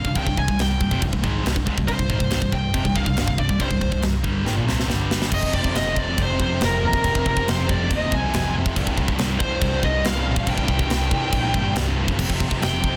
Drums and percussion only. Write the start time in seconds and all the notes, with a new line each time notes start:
0.05 kick
0.15 kick, crash
0.27 kick
0.37 kick
0.48 kick
0.59 snare, crash
0.81 kick
0.91 kick
1.02 kick, crash
1.13 kick
1.24 kick
1.46 snare, crash
1.56 kick
1.67 kick
1.78 kick
1.88 kick, crash
1.99 kick
2.10 kick
2.20 kick
2.31 snare, crash
2.42 kick
2.52 kick
2.74 kick, crash
2.85 kick
2.96 kick
3.06 kick
3.17 snare, crash
3.28 kick
3.38 kick
3.49 kick
3.60 kick, crash
3.71 kick
3.81 kick
3.92 kick
4.02 snare, crash
4.24 kick
4.46 snare
4.69 snare
4.80 snare
4.90 snare
5.11 snare
5.22 snare
5.32 kick, crash, china
5.43 kick
5.53 kick
5.64 kick
5.75 snare, china
5.96 kick
6.18 kick, china
6.40 kick
6.61 snare, china
6.93 kick
7.04 kick, china
7.15 kick
7.26 kick
7.37 kick
7.48 snare, china
7.69 kick
7.91 kick, china
8.12 kick
8.34 snare, china
8.66 kick
8.76 kick, china
8.87 kick
8.98 kick
9.08 kick
9.18 snare, china
9.40 kick
9.61 kick, china
9.83 kick
10.05 snare, china
10.36 kick
10.47 kick, china
10.58 kick
10.68 kick
10.79 kick
10.90 snare, china
11.11 kick
11.33 kick, china
11.54 kick
11.76 snare, china
12.08 kick
12.19 kick, crash, china
12.30 kick
12.40 kick
12.51 kick
12.62 snare, china
12.84 kick